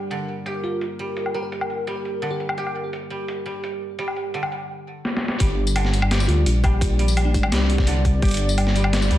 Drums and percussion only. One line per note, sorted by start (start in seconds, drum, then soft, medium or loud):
0.11 closed hi-hat medium
0.46 closed hi-hat medium
0.64 closed hi-hat soft
0.81 closed hi-hat medium
1.17 closed hi-hat medium
1.26 low woodblock soft
1.52 closed hi-hat medium
1.61 low woodblock medium
1.70 closed hi-hat soft
1.87 closed hi-hat medium
2.05 closed hi-hat soft
2.23 closed hi-hat medium
2.40 closed hi-hat soft
2.49 low woodblock medium
2.58 closed hi-hat medium
2.67 low woodblock soft
2.93 closed hi-hat medium
3.28 closed hi-hat medium
3.46 closed hi-hat soft
3.64 closed hi-hat medium
3.99 closed hi-hat medium
4.08 low woodblock soft
4.16 closed hi-hat soft
4.34 closed hi-hat medium
4.43 low woodblock medium
4.52 closed hi-hat soft
5.05 snare medium
5.17 snare medium
5.28 snare medium
5.40 kick loud
5.40 closed hi-hat medium
5.67 tambourine medium
5.76 closed hi-hat medium
5.76 low woodblock medium
5.85 snare soft
5.94 closed hi-hat soft
5.94 tambourine soft
6.02 low woodblock medium
6.11 snare loud
6.11 closed hi-hat medium
6.20 tambourine medium
6.29 closed hi-hat soft
6.46 closed hi-hat medium
6.64 kick loud
6.64 closed hi-hat soft
6.64 low woodblock medium
6.81 kick loud
6.81 closed hi-hat medium
6.99 closed hi-hat soft
7.08 tambourine medium
7.17 closed hi-hat medium
7.17 low woodblock medium
7.34 kick medium
7.34 closed hi-hat soft
7.34 tambourine soft
7.43 low woodblock medium
7.52 snare loud
7.52 closed hi-hat medium
7.70 closed hi-hat soft
7.78 kick loud
7.78 snare soft
7.87 closed hi-hat medium
8.05 kick medium
8.05 closed hi-hat soft
8.22 kick loud
8.22 closed hi-hat soft
8.25 closed hi-hat soft
8.28 closed hi-hat medium
8.31 closed hi-hat medium
8.34 closed hi-hat medium
8.37 closed hi-hat medium
8.49 tambourine medium
8.58 closed hi-hat medium
8.58 low woodblock medium
8.67 snare soft
8.76 closed hi-hat soft
8.76 tambourine soft
8.84 low woodblock medium
8.93 snare loud
8.93 closed hi-hat medium
9.02 tambourine medium
9.11 closed hi-hat soft